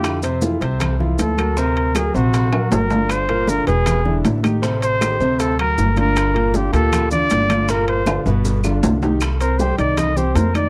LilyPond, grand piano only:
\new Staff \with { instrumentName = "Grand piano" } { \time 4/4 \key g \minor \tempo 4 = 157 <d e' f'>8 <c c' c''>8 <e e' f'>8 <c c' c''>4 <f e' f'>4 <fis fis' bes'>8 | <c c' c''>4 <fis fis' ais'>8 <c c' c''>4 <fis fis' ais'>4 <d d' eis'>8~ | <d d' eis'>8 <bes, bes bes'>8 <d d' f'>8 <b, b b'>4 <d d' e'>4 <ees ees' g'>8 | <c c' c''>4 <ees ees' g'>8 <c c' c''>4 <fis fis' bes'>4 <d d' f'>8~ |
<d d' f'>8 <bes, bes bes'>8 <d d' f'>8 <bes, bes g'>4 <d d' f'>4 <d d' f'>8 | <bes, bes bes'>4 <d d' f'>8 <b, b b'>4 <d d' f'>4 <ees ees' g'>8 | \key c \minor r8 <c' c'' c'''>8 <g g' g''>8 <ees ees' ees''>4 <c' c'' c'''>4 <ees ees' ees''>8 | }